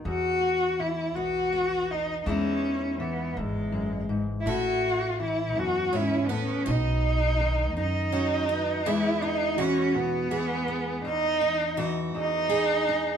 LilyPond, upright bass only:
\new Staff \with { instrumentName = "Upright bass" } { \clef bass \time 6/8 \key e \major \tempo 4. = 55 e,4. b,,4. | e,4. gis,,4. | a,,4. e,4. | b,,4. fis,4. |
r2. | r2. | }